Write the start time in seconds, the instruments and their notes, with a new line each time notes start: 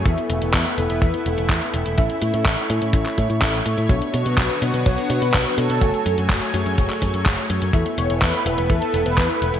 Already playing: analog synth pad A3
0.06 picked electric bass E2, tine electric piano B3 E4 A4 E5, analog synth pad B3 E4, kick, closed hi-hat
0.18 closed hi-hat
0.30 picked electric bass E1, closed hi-hat
0.42 picked electric bass E1, closed hi-hat
0.54 picked electric bass E2, kick, clap, closed hi-hat
0.66 closed hi-hat
0.78 picked electric bass E1, tine electric piano B3 E4 A4 E5, closed hi-hat
0.90 picked electric bass E1, closed hi-hat
1.02 picked electric bass E2, tine electric piano B3 E4 A4 E5, kick, closed hi-hat
1.14 closed hi-hat
1.26 picked electric bass E1, closed hi-hat
1.38 picked electric bass E1, closed hi-hat
1.49 picked electric bass E2, kick, clap, closed hi-hat
1.62 closed hi-hat
1.74 picked electric bass E1, closed hi-hat
1.86 picked electric bass E1, closed hi-hat
1.98 picked electric bass A1, tine electric piano C#4 E4 A4 E5, analog synth pad C#5, kick, closed hi-hat
2.10 closed hi-hat
2.22 picked electric bass A2, closed hi-hat
2.34 picked electric bass A2, closed hi-hat
2.45 picked electric bass A1, kick, clap, closed hi-hat
2.58 closed hi-hat
2.70 picked electric bass A2, tine electric piano C#4 E4 A4 E5, closed hi-hat
2.82 picked electric bass A2, closed hi-hat
2.93 picked electric bass A1, tine electric piano C#4 E4 A4 E5, kick, closed hi-hat
3.06 clap, closed hi-hat
3.18 picked electric bass A2, kick, closed hi-hat
3.30 picked electric bass A2, closed hi-hat
3.42 picked electric bass A1, kick, clap, closed hi-hat
3.54 closed hi-hat
3.66 picked electric bass A2, closed hi-hat
3.78 picked electric bass A2, closed hi-hat
3.89 picked electric bass B1, analog synth pad D3 F#3 B3 F#4, tine electric piano B3 D4 F#4 C#5, kick, closed hi-hat
4.02 closed hi-hat
4.14 picked electric bass B2, analog polysynth F#4, closed hi-hat
4.26 picked electric bass B2, closed hi-hat
4.37 picked electric bass B1, analog polysynth B4, kick, clap, closed hi-hat
4.50 closed hi-hat
4.62 picked electric bass B2, tine electric piano B3 D4 F#4 C#5, closed hi-hat
4.74 picked electric bass B2, closed hi-hat
4.86 picked electric bass B1, tine electric piano B3 D4 F#4 C#5, analog polysynth C#5, kick, closed hi-hat
4.98 closed hi-hat
5.10 picked electric bass B2, analog polysynth B4, closed hi-hat
5.22 picked electric bass B2, closed hi-hat
5.34 picked electric bass B1, kick, clap, closed hi-hat
5.46 closed hi-hat
5.58 picked electric bass B2, analog polysynth A4, closed hi-hat
5.70 picked electric bass B2, closed hi-hat
5.82 picked electric bass F#1, analog synth pad A3 G#5, tine electric piano A3 F#4 C#5 G#5, kick, closed hi-hat
5.94 closed hi-hat
6.06 picked electric bass F#2, closed hi-hat
6.18 picked electric bass F#2, closed hi-hat
6.29 picked electric bass F#1, kick, clap, closed hi-hat
6.42 closed hi-hat
6.54 picked electric bass F#2, tine electric piano A3 F#4 G#4 C#5, closed hi-hat
6.66 picked electric bass F#2, closed hi-hat
6.78 picked electric bass F#1, tine electric piano A3 F#4 G#4 C#5, kick, closed hi-hat
6.90 clap, closed hi-hat
7.02 picked electric bass F#2, kick, closed hi-hat
7.14 picked electric bass F#2, closed hi-hat
7.26 picked electric bass F#1, kick, clap, closed hi-hat
7.38 closed hi-hat
7.50 picked electric bass F#2, closed hi-hat
7.62 picked electric bass F#2, closed hi-hat
7.73 picked electric bass E2, analog synth pad A3 B3 E4, tine electric piano B3 E4 A4 E5, kick, closed hi-hat
7.86 closed hi-hat
7.98 picked electric bass E1, analog polysynth C#5, closed hi-hat
8.10 picked electric bass E1, closed hi-hat
8.22 picked electric bass E2, analog polysynth B4, kick, clap, closed hi-hat
8.34 closed hi-hat
8.46 picked electric bass E1, tine electric piano B3 E4 A4 E5, closed hi-hat
8.58 picked electric bass E1, closed hi-hat
8.70 picked electric bass E2, tine electric piano B3 E4 A4 E5, analog polysynth A4, kick, closed hi-hat
8.82 closed hi-hat
8.94 picked electric bass E1, closed hi-hat
9.06 picked electric bass E1, analog polysynth B4, closed hi-hat
9.18 picked electric bass E2, kick, clap, closed hi-hat
9.30 closed hi-hat
9.42 picked electric bass E1, analog polysynth B4, closed hi-hat
9.54 picked electric bass E1, closed hi-hat